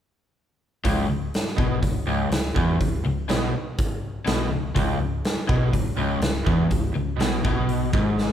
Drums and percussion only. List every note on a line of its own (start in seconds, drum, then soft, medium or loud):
0.85 kick medium
0.85 open hi-hat medium
1.34 snare medium
1.34 open hi-hat soft
1.47 snare soft
1.58 kick loud
1.83 kick medium
1.83 open hi-hat medium
2.31 snare loud
2.31 open hi-hat medium
2.56 kick loud
2.81 kick medium
2.81 open hi-hat medium
3.29 snare loud
3.29 open hi-hat soft
3.78 kick loud
3.78 open hi-hat medium
4.27 snare loud
4.27 open hi-hat soft
4.76 kick medium
4.76 open hi-hat soft
5.24 snare medium
5.24 open hi-hat soft
5.49 kick loud
5.73 kick medium
5.73 open hi-hat medium
6.21 snare loud
6.21 open hi-hat medium
6.47 kick medium
6.70 kick medium
6.70 open hi-hat medium
7.20 snare loud
7.20 open hi-hat soft
7.45 kick loud
7.69 open hi-hat medium
7.93 kick loud
8.18 snare medium